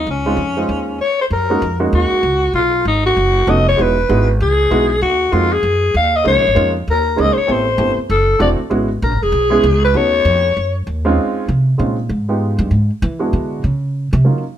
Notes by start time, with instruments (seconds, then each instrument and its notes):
0.07 upright bass C#2, alto saxophone C#4
0.26 grand piano G#3 C4 D#4 F4
0.37 upright bass F2
0.57 grand piano G#3 D#4 F4 C5
0.69 upright bass D#2
1.01 alto saxophone C#5
1.21 alto saxophone C5
1.30 upright bass F#2, alto saxophone A#4
1.50 grand piano G#3 A#3 C#4 D#4 F#4
1.62 upright bass F2
1.80 grand piano G#3 A#3 C#4 D#4 F#4
1.93 upright bass D#2, alto saxophone F#4
2.12 muted upright bass stroke
2.23 upright bass C#2
2.53 upright bass B1, alto saxophone F4
2.85 upright bass G#1, alto saxophone D#4
3.06 alto saxophone F#4
3.17 upright bass F#1
3.47 upright bass F1, grand piano A3 B3 C#4 D#4 F#4, alto saxophone D#5
3.68 alto saxophone C#5
3.77 upright bass E1, grand piano G#3 B3 D#4 E4 F#4
3.82 alto saxophone B4
4.09 upright bass G#1, grand piano G#3 B3 D#4 E4 F#4
4.40 upright bass C#2, alto saxophone G#4
4.71 upright bass B1, grand piano G#3 B3 D#4 E4 F#4
5.01 upright bass D#2, alto saxophone F#4
5.32 upright bass F2, grand piano G#3 A#3 C4 D#4 F#4, alto saxophone F4
5.53 alto saxophone G#4
5.63 upright bass F#2
5.94 upright bass D#2, alto saxophone F5
6.16 alto saxophone D#5
6.24 upright bass C#2, grand piano G#3 A#3 C#4 D#4 F4, alto saxophone C#5
6.35 upright bass A#1
6.47 upright bass G#1
6.55 upright bass F2, grand piano G#3 A#3 C#4 D#4 F4
6.88 upright bass D#2, alto saxophone A#4
7.16 upright bass C#2, grand piano G#3 A#3 C#4 D#4 G#4
7.21 alto saxophone D#5
7.33 alto saxophone C5, muted upright bass stroke
7.38 alto saxophone C#5
7.47 upright bass A1, grand piano A3 B3 C4 E4 G4
7.51 alto saxophone C5
7.77 upright bass G1, grand piano A3 B3 C4 E4 G4
7.97 muted upright bass stroke
8.10 upright bass F#1, alto saxophone A4
8.39 upright bass E1, grand piano A3 C4 D4 E4 F#4, alto saxophone D5
8.59 muted upright bass stroke
8.70 upright bass G#1, grand piano G#3 B3 C#4 E4 F#4
9.02 upright bass A#1, alto saxophone A#4
9.12 upright bass G#1
9.23 upright bass E1, alto saxophone G#4
9.32 upright bass B1
9.50 grand piano G#3 B3 C#4 E4 G#4
9.63 upright bass C#2
9.84 alto saxophone B4
9.94 upright bass D#2, grand piano A3 B3 C#4 D#4 F#4, alto saxophone C#5
10.25 upright bass F2
10.57 upright bass F#2
10.87 upright bass D#2
11.05 grand piano G#3 C4 C#4 D#4 F4
11.48 upright bass C3
11.78 upright bass A#2, grand piano G#3 C4 C#4 D#4 F4
12.09 upright bass G#2
12.29 grand piano G#3 B3 D#4 F4 G4
12.59 upright bass G2
12.71 upright bass G#2
13.02 upright bass E3
13.19 grand piano G#3 B3 D4 E4 F#4
13.33 upright bass D3
13.64 upright bass C#3
14.13 upright bass C3
14.25 upright bass C#3, grand piano F#3 A#3 C#4 D#4 F4